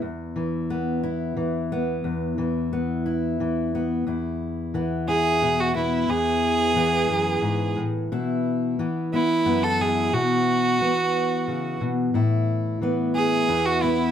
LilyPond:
<<
  \new Staff \with { instrumentName = "Fiddle" } { \time 6/8 \key e \major \tempo 4. = 59 r2. | r2. | r4. gis'8. fis'16 e'8 | gis'2~ gis'8 r8 |
r4. e'8. a'16 gis'8 | fis'2~ fis'8 r8 | r4. gis'8. fis'16 e'8 | }
  \new Staff \with { instrumentName = "Steel-string acoustic guitar" } { \time 6/8 \key e \major << { r4 b8 e'4 b8 | r4 b8 e'4 b8 | e'4 b8 e'8 e'8 b8 | e'4 b2 |
e'4 b8 b8 b8 e'8 | e'4 b2 | e'4 b8 e'8 e'8 b8 | } \\ { r8 e4. e4 | e,8 e4. e4 | e,4 e4 b,4 | e,4 e8 fis,8 gis,8 a,8 |
b,4 e4 fis,4 | b,4 e8 r8 cis8 b,8 | a,4 e4 e,4 | } >> }
>>